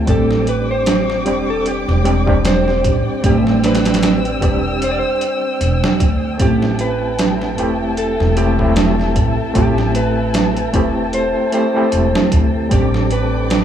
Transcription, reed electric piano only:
0.06 1.21 G3 medium
0.06 1.22 C4 medium
0.06 1.23 D4 medium
0.10 1.23 G4 loud
1.25 2.01 G3 loud
1.25 2.02 C4 medium
1.25 2.02 D4 medium
1.25 2.02 G4 loud
2.04 2.22 G3 medium
2.04 2.22 C4 medium
2.04 2.23 D4 medium
2.04 2.23 G4 loud
2.27 2.41 G3 medium
2.27 2.41 C4 medium
2.27 2.41 D4 medium
2.27 2.42 G4 loud
3.22 4.37 G3 medium
3.22 4.38 C4 medium
3.22 4.39 D4 medium
3.27 4.39 G4 loud
4.41 5.17 G3 medium
4.41 5.18 C4 medium
4.41 5.18 D4 medium
4.41 5.18 G4 loud
6.38 7.53 A3 medium
6.38 7.54 C4 medium
6.38 7.54 E4 medium
6.42 7.55 G4 loud
7.57 8.33 A3 loud
7.57 8.33 C4 medium
7.57 8.34 E4 medium
7.57 8.34 G4 loud
8.36 8.53 A3 medium
8.36 8.54 C4 medium
8.36 8.54 E4 medium
8.36 8.54 G4 loud
8.58 8.72 A3 medium
8.58 8.73 C4 medium
8.58 8.73 E4 medium
8.58 8.74 G4 medium
9.54 10.69 A3 medium
9.54 10.70 C4 medium
9.54 10.70 E4 medium
9.58 10.71 G4 medium
10.73 11.49 A3 medium
10.73 11.49 C4 medium
10.73 11.50 E4 medium
10.73 11.50 G4 loud
11.52 11.69 A3 medium
11.52 11.70 C4 medium
11.52 11.70 E4 medium
11.52 11.70 G4 loud
11.74 11.88 A3 medium
11.74 11.89 C4 medium
11.74 11.89 E4 medium
11.74 11.89 G4 medium
12.69 13.64 G3 medium
12.69 13.64 C4 medium
12.69 13.64 D4 medium
12.74 13.64 G4 medium

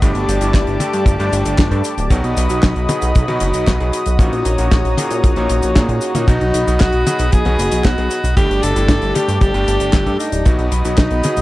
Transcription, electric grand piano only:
0.02 0.38 G2 loud
0.02 0.38 G3 medium
0.02 0.38 A3 medium
0.02 0.38 D4 medium
0.02 0.38 G4 loud
0.41 0.77 G2 medium
0.41 0.77 G3 medium
0.41 0.77 A3 medium
0.41 0.77 D4 medium
0.41 0.77 E4 medium
0.80 1.16 G2 medium
0.80 1.16 G3 medium
0.80 1.16 A3 medium
0.80 1.16 D4 medium
0.80 1.16 A4 medium
1.19 1.69 G2 medium
1.19 1.69 G3 medium
1.19 1.69 A3 medium
1.19 1.69 D4 medium
1.19 1.69 G4 loud
1.72 1.92 G2 medium
1.72 1.92 G3 medium
1.72 1.92 A3 medium
1.72 1.92 D4 medium
1.72 1.92 A4 medium
2.11 2.47 B2 medium
2.11 2.47 F#3 medium
2.11 2.47 B3 medium
2.11 2.47 D#4 medium
2.11 2.47 F#4 loud
2.50 2.86 B2 medium
2.50 2.86 F#3 medium
2.50 2.86 B3 medium
2.50 2.86 D#4 medium
2.50 2.86 F#4 medium
2.89 3.25 B2 medium
2.89 3.25 F#3 medium
2.89 3.25 B3 medium
2.89 3.25 D#4 medium
2.89 3.25 G#4 medium
3.28 3.77 B2 loud
3.28 3.77 F#3 medium
3.28 3.77 B3 medium
3.28 3.77 D#4 medium
3.28 3.77 F#4 loud
3.80 4.01 B2 medium
3.80 4.01 F#3 medium
3.80 4.01 B3 medium
3.80 4.01 D#4 medium
3.80 4.01 G#4 medium
4.20 4.56 A#2 medium
4.20 4.56 A#3 medium
4.20 4.56 C#4 medium
4.20 4.56 D#4 medium
4.20 4.56 F#4 loud
4.59 4.95 A#2 medium
4.59 4.95 A#3 medium
4.59 4.95 C#4 medium
4.59 4.95 D#4 medium
4.59 4.95 F#4 medium
4.98 5.34 A#2 medium
4.98 5.34 A#3 medium
4.98 5.34 C#4 medium
4.98 5.34 D#4 medium
4.98 5.34 G#4 medium
5.37 5.73 A#2 medium
5.37 5.73 A#3 medium
5.37 5.73 C#4 medium
5.37 5.73 D#4 medium
5.37 5.73 F#4 loud
5.76 6.12 A#2 medium
5.76 6.12 A#3 medium
5.76 6.12 C#4 medium
5.76 6.12 D#4 medium
5.76 6.12 G#4 loud
6.15 6.26 A#3 medium
6.15 6.26 C#4 medium
6.15 6.26 D#4 medium
6.15 6.26 F#4 loud
6.28 6.64 B2 medium
6.28 6.64 F#3 medium
6.28 6.64 B3 medium
6.28 6.64 D#4 medium
6.28 6.64 F#4 loud
6.67 7.03 B2 medium
6.67 7.03 F#3 medium
6.67 7.03 B3 medium
6.67 7.03 D#4 medium
6.67 7.03 F#4 medium
7.06 7.42 B2 medium
7.06 7.42 F#3 medium
7.06 7.42 B3 medium
7.06 7.42 D#4 medium
7.06 7.42 G#4 medium
7.46 7.95 B2 medium
7.46 7.95 F#3 medium
7.46 7.95 B3 medium
7.46 7.95 D#4 medium
7.46 7.95 F#4 loud
7.98 8.18 B2 medium
7.98 8.18 F#3 medium
7.98 8.18 B3 medium
7.98 8.18 D#4 medium
7.98 8.18 G#4 medium
8.37 8.73 G2 loud
8.37 8.73 G3 medium
8.37 8.73 A3 medium
8.37 8.73 D4 medium
8.37 8.73 G4 loud
8.76 9.12 G2 medium
8.76 9.12 G3 medium
8.76 9.12 A3 medium
8.76 9.12 D4 medium
8.76 9.12 E4 medium
9.15 9.51 G2 medium
9.15 9.51 G3 medium
9.15 9.51 A3 medium
9.15 9.51 D4 medium
9.15 9.51 A4 medium
9.54 10.03 G2 medium
9.54 10.03 G3 medium
9.54 10.03 A3 medium
9.54 10.03 D4 medium
9.54 10.03 G4 loud
10.06 10.27 G2 medium
10.06 10.27 G3 medium
10.06 10.27 A3 medium
10.06 10.27 D4 medium
10.06 10.27 A4 medium
10.46 10.82 B2 medium
10.46 10.82 F#3 medium
10.46 10.82 B3 medium
10.46 10.82 D#4 medium
10.46 10.82 F#4 loud
10.85 11.21 B2 medium
10.85 11.21 F#3 medium
10.85 11.21 B3 medium
10.85 11.21 D#4 medium
10.85 11.21 F#4 medium
11.24 11.42 B2 medium
11.24 11.42 F#3 medium
11.24 11.42 B3 medium
11.24 11.42 D#4 medium
11.24 11.42 G#4 medium

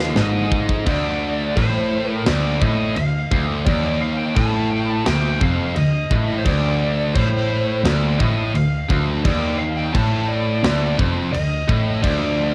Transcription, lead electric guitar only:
0.00 0.47 F5 medium
0.19 0.84 D#5 medium
0.87 1.59 D5 medium
1.57 2.11 C5 medium
2.11 2.29 A#4 medium
2.26 2.59 D5 loud
2.61 2.95 D#5 medium
2.96 3.45 F5 medium
3.65 4.01 D5 loud
4.02 4.18 F5 medium
4.17 4.35 G5 loud
4.36 4.71 A5 loud
4.71 4.90 G5 medium
4.90 5.07 A5 loud
5.07 5.42 G5 loud
5.43 5.75 F5 loud
5.76 6.40 D#5 medium
6.38 6.46 C5 medium
6.45 7.11 D5 loud
7.14 7.87 C5 medium
7.85 8.19 D5 medium
8.19 8.54 D#5 medium
8.55 9.03 F5 medium
9.25 9.57 D5 medium
9.58 9.77 F5 medium
9.76 9.94 G5 medium
9.94 10.30 A5 medium
10.28 10.94 D5 medium
11.32 12.02 D#5 medium
12.03 12.54 D5 loud

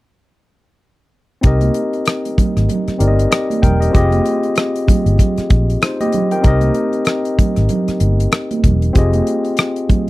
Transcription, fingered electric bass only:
1.44 1.69 C2 medium
2.39 muted fingered electric bass stroke soft
2.57 2.67 G#1 medium
2.88 muted fingered electric bass stroke soft
3.00 3.25 G1 medium
3.63 3.88 E1 medium
3.95 4.19 F1 medium
4.89 muted fingered electric bass stroke soft
5.06 5.17 G1 medium
5.38 muted fingered electric bass stroke soft
5.51 5.76 A#1 medium
6.45 6.69 C2 medium
7.39 muted fingered electric bass stroke soft
7.57 7.68 G#1 medium
7.88 muted fingered electric bass stroke soft
8.01 8.26 G1 medium
8.64 8.89 E1 medium
8.96 9.20 F1 medium
9.90 muted fingered electric bass stroke soft

